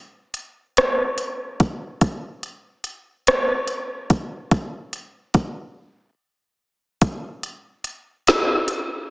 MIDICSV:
0, 0, Header, 1, 2, 480
1, 0, Start_track
1, 0, Tempo, 833333
1, 1162, Time_signature, 6, 3, 24, 8
1, 5242, End_track
2, 0, Start_track
2, 0, Title_t, "Drums"
2, 195, Note_on_c, 9, 42, 53
2, 253, Note_off_c, 9, 42, 0
2, 444, Note_on_c, 9, 42, 73
2, 450, Note_on_c, 9, 37, 102
2, 502, Note_off_c, 9, 42, 0
2, 508, Note_off_c, 9, 37, 0
2, 678, Note_on_c, 9, 42, 50
2, 735, Note_off_c, 9, 42, 0
2, 921, Note_on_c, 9, 42, 52
2, 923, Note_on_c, 9, 36, 84
2, 979, Note_off_c, 9, 42, 0
2, 980, Note_off_c, 9, 36, 0
2, 1159, Note_on_c, 9, 42, 68
2, 1160, Note_on_c, 9, 36, 94
2, 1217, Note_off_c, 9, 42, 0
2, 1218, Note_off_c, 9, 36, 0
2, 1400, Note_on_c, 9, 42, 43
2, 1458, Note_off_c, 9, 42, 0
2, 1636, Note_on_c, 9, 42, 46
2, 1693, Note_off_c, 9, 42, 0
2, 1885, Note_on_c, 9, 42, 77
2, 1891, Note_on_c, 9, 37, 102
2, 1942, Note_off_c, 9, 42, 0
2, 1948, Note_off_c, 9, 37, 0
2, 2117, Note_on_c, 9, 42, 48
2, 2174, Note_off_c, 9, 42, 0
2, 2361, Note_on_c, 9, 42, 48
2, 2363, Note_on_c, 9, 36, 87
2, 2419, Note_off_c, 9, 42, 0
2, 2420, Note_off_c, 9, 36, 0
2, 2600, Note_on_c, 9, 36, 104
2, 2600, Note_on_c, 9, 42, 67
2, 2658, Note_off_c, 9, 36, 0
2, 2658, Note_off_c, 9, 42, 0
2, 2839, Note_on_c, 9, 42, 45
2, 2897, Note_off_c, 9, 42, 0
2, 3076, Note_on_c, 9, 42, 49
2, 3079, Note_on_c, 9, 36, 80
2, 3134, Note_off_c, 9, 42, 0
2, 3136, Note_off_c, 9, 36, 0
2, 4040, Note_on_c, 9, 42, 80
2, 4042, Note_on_c, 9, 36, 120
2, 4098, Note_off_c, 9, 42, 0
2, 4099, Note_off_c, 9, 36, 0
2, 4281, Note_on_c, 9, 42, 50
2, 4339, Note_off_c, 9, 42, 0
2, 4517, Note_on_c, 9, 42, 55
2, 4575, Note_off_c, 9, 42, 0
2, 4765, Note_on_c, 9, 42, 77
2, 4771, Note_on_c, 9, 38, 115
2, 4823, Note_off_c, 9, 42, 0
2, 4829, Note_off_c, 9, 38, 0
2, 4999, Note_on_c, 9, 42, 60
2, 5056, Note_off_c, 9, 42, 0
2, 5242, End_track
0, 0, End_of_file